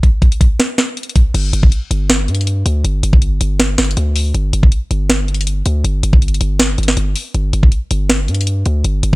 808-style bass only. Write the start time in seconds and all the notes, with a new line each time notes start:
1.34 G1
1.53 G1
1.91 G1
2.28 G2
2.66 D2
2.84 G1
3.03 G1
3.41 G1
3.78 G1
3.97 D2
4.34 G1
4.53 G1
4.91 G1
5.66 D2
5.84 G1
6.03 G1
6.41 G1
6.78 G1
6.97 G1
7.34 G1
7.53 G1
7.91 G1
8.28 G2
8.66 D2
8.85 G1
9.03 G1